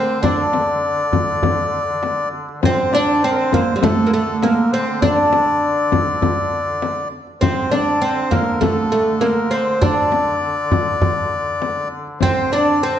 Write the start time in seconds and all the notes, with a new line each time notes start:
Already playing: D3 C4 C5
0.09 darbuka ka
0.23 D4 D5, darbuka dum, frame drum
0.38 darbuka ka
0.53 darbuka tek, frame drum
1.13 darbuka dum, frame drum
1.43 darbuka dum, frame drum
2.03 darbuka tek, frame drum
2.33 darbuka ka
2.49 darbuka ka
2.62 D3 C4 C5, frame drum, darbuka dum
2.79 darbuka ka
2.93 D4 D5, darbuka tek, frame drum
3.23 C4 C5
3.31 A#4
3.37 C5
3.53 A#3, frame drum, darbuka dum
3.76 G3
3.82 A3 A4, frame drum, darbuka dum
4.07 A#3
4.13 A3 A4
4.43 A#3 A#4, darbuka tek, frame drum
4.72 C4 C5, darbuka ka
4.88 darbuka ka
5.02 D4 D5, frame drum, darbuka dum
5.18 darbuka ka
5.33 darbuka tek, frame drum
5.92 frame drum, darbuka dum
6.22 frame drum, darbuka dum
6.67 darbuka ka
6.82 darbuka tek, frame drum
7.12 darbuka ka
7.27 darbuka ka
7.41 D3 C4 C5, darbuka dum, frame drum
7.57 darbuka ka
7.71 D4 D5, darbuka tek, frame drum
8.02 C4 C5
8.31 A#3 A#4, darbuka dum, frame drum
8.61 A3 A4, frame drum, darbuka dum
8.92 A3
9.21 A#3 A#4, darbuka tek, frame drum
9.51 C4 C5, darbuka ka
9.67 darbuka ka
9.81 D4 D5, darbuka dum, frame drum
9.97 darbuka ka
10.12 darbuka tek, frame drum
10.72 darbuka dum, frame drum
11.02 darbuka dum, frame drum
11.62 darbuka tek, frame drum
11.92 darbuka ka
12.07 darbuka ka
12.20 D3 C4 C5, frame drum, darbuka dum
12.37 darbuka ka
12.52 D4 D5, darbuka tek
12.83 C4 C5